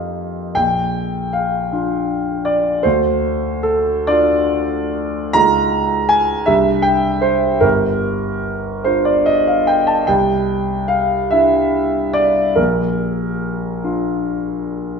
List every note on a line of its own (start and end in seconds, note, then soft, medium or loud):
0.00 0.50 F2 soft
0.00 0.50 F3 soft
0.00 0.51 A#3 soft
0.00 0.51 D#4 soft
0.00 0.52 G4 soft
0.00 0.15 F5 medium
0.55 2.80 A#1 soft
0.55 1.34 G5 medium
1.33 2.47 F5 soft
1.72 2.80 D4 soft
1.72 2.81 F4 soft
2.45 2.83 D5 medium
2.83 5.31 D2 soft
2.83 3.65 C5 medium
3.63 4.07 A4 medium
4.07 5.30 D4 soft
4.07 5.30 F4 soft
4.07 5.34 D5 medium
5.33 6.45 C#2 soft
5.33 6.44 D#4 soft
5.33 6.44 F4 soft
5.33 6.10 A#5 medium
6.09 6.47 G#5 medium
6.46 7.59 C2 soft
6.46 7.59 D4 soft
6.46 7.59 G4 soft
6.46 6.85 E5 medium
6.82 7.22 G5 medium
7.21 7.62 C5 medium
7.60 10.04 G1 soft
7.60 8.85 A#4 medium
8.84 10.04 D4 soft
8.84 10.04 F4 soft
8.84 9.07 C5 medium
9.05 9.27 D5 medium
9.26 9.48 D#5 medium
9.47 9.68 F5 medium
9.67 9.88 G5 medium
9.87 10.08 A5 medium
10.07 12.53 C2 soft
10.07 10.89 G5 medium
10.88 11.31 F5 medium
11.31 12.53 D4 soft
11.31 12.53 E4 soft
11.31 12.14 E5 medium
12.13 12.56 D5 medium
12.56 15.00 A#1 soft
12.56 13.84 A#4 medium
13.84 15.00 D4 soft
13.84 15.00 F4 soft